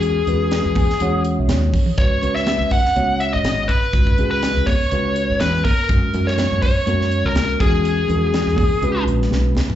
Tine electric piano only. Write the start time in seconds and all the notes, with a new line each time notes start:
Already playing: G#3 C#4 F#4 A#4
0.27 G#3 C#4 F#4 B4
0.77 G#5
1.01 G#3 C#4 F#4 C#5 F#5
1.40 E5
1.50 C#5
1.98 G#3 C#4 F#4 B4
2.22 G#3 C#4 F#4 B4
2.96 G#3 C#4 F#4 C#5
3.93 G#3 C#4 F#4 B4
4.18 G#3 C#4 F#4 G#4
4.92 G#3 C#4 F#4 B4
5.89 G#3 C#4 F#4 A#4
6.13 G#3 C#4 F#4 A#4
6.86 G#3 C#4 F#4 A#4
7.60 G#3 C#4 F#4 A#4
8.09 G#3 C#4 F#4 A#4
8.82 G#3 C#4 F#4 B4